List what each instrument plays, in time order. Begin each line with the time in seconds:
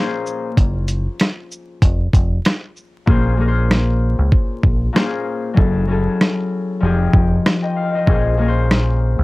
Already playing: harp A#2 A#3 C#4 G#4 C5
0.27 shaker
0.57 fingered electric bass F#1, kick, closed hi-hat
0.88 closed hi-hat, shaker
1.20 cross-stick, snare, closed hi-hat
1.52 shaker
1.82 fingered electric bass F1, kick, closed hi-hat
2.13 fingered electric bass F1, kick, closed hi-hat, shaker
2.45 cross-stick, snare, closed hi-hat
2.76 shaker
3.06 fingered electric bass A#1, harp A#2 A#3 C#4 G#4, kick
3.10 harp C5
3.37 harp A#2 A#3 C#4 G#4
3.41 harp A#4
3.48 harp C5
3.71 cross-stick, snare
4.19 fingered electric bass C#2
4.32 kick
4.63 fingered electric bass A#1, kick
4.93 harp A#2 A#3 C#4 G#4, cross-stick, snare
4.97 harp C5
5.54 fingered electric bass F#1, harp F#3 C#4 E4 G#4, kick
5.58 harp A4
5.87 harp F#3 C#4 E4 G#4
5.91 harp A4
6.21 cross-stick, snare
6.80 fingered electric bass F1, harp F3 C4 D#4 G4
6.84 harp G#4
7.13 fingered electric bass F1, kick
7.46 cross-stick, snare
7.62 harp D#5 G5
7.76 harp F5
7.95 harp C5 D#5
8.06 fingered electric bass A#1, harp A#2 A#3 C#4 G#4, kick
8.10 harp C5
8.37 harp A#2 A#3 C#4 G#4
8.41 harp A#4
8.48 harp C5
8.71 cross-stick, snare
9.19 fingered electric bass C#2